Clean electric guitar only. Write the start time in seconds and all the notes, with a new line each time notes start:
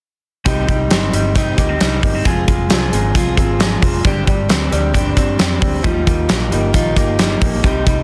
0.45 G3 D#4
0.68 G3
0.91 C4
1.14 G3
1.36 D#4
1.58 A#3
1.69 C4
1.81 G3
2.03 A#3
2.15 C4
2.26 G#3 F4
2.48 G#3
2.70 C4
2.93 G#3
3.15 F4
3.37 C4
3.60 G#3
3.82 C4
4.04 G3 D4
4.27 G3
4.49 C4
4.71 G3
4.94 D4
5.17 C4
5.39 G3
5.61 C4
5.84 G3 F4
6.06 G3
6.29 A#3
6.52 G3
6.74 F4
6.96 A#3
7.19 G3
7.41 A#3
7.64 G3 D#4
7.87 G3